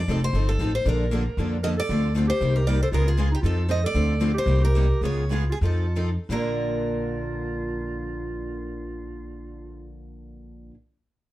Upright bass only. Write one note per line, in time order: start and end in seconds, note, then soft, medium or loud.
0.08 0.30 F1 medium
0.33 0.55 G1 medium
0.59 0.81 A1 medium
0.85 1.27 A#1 medium
1.37 1.78 F2 medium
1.89 2.30 D2 medium
2.41 2.82 C2 medium
2.92 3.33 C#2 medium
3.43 3.84 F2 medium
3.94 4.36 D2 medium
4.46 4.90 C2 loud
5.01 5.49 C#2 medium
5.61 6.16 F2 medium
6.29 10.69 A#1 medium